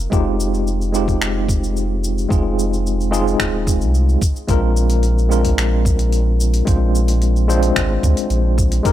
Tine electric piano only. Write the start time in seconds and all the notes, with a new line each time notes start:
0.10 G#3 C4 D#4 F4 G4
0.92 G#3 C4 D#4 F4 G4
2.28 G#3 C4 D#4 F4 G#4
3.11 G#3 C4 D#4 F4 G#4
4.47 G#3 C4 D4 F4 A#4
5.29 G#3 C4 D4 F4 A#4
6.65 G#3 C4 D4 F4 C5
7.48 G#3 C4 D4 F4 C5
8.83 G#3 C4 D#4 G4 A#4